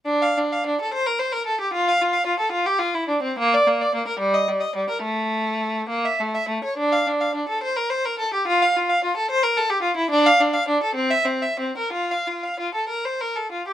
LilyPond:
\new Staff \with { instrumentName = "Violin" } { \time 6/8 \key d \minor \tempo 4. = 70 d'16 f''16 d'16 f''16 d'16 a'16 c''16 bes'16 c''16 bes'16 a'16 g'16 | f'16 f''16 f'16 f''16 f'16 a'16 f'16 g'16 f'16 e'16 d'16 c'16 | bes16 d''16 bes16 d''16 bes16 bes'16 g16 ees''16 g16 ees''16 g16 bes'16 | a4. bes16 e''16 a16 e''16 a16 cis''16 |
d'16 f''16 d'16 f''16 d'16 a'16 c''16 bes'16 c''16 bes'16 a'16 g'16 | f'16 f''16 f'16 f''16 f'16 a'16 c''16 bes'16 a'16 g'16 f'16 e'16 | \key f \major d'16 f''16 d'16 f''16 d'16 a'16 c'16 e''16 c'16 e''16 c'16 bes'16 | f'16 f''16 f'16 f''16 f'16 a'16 bes'16 c''16 bes'16 a'16 f'16 g'16 | }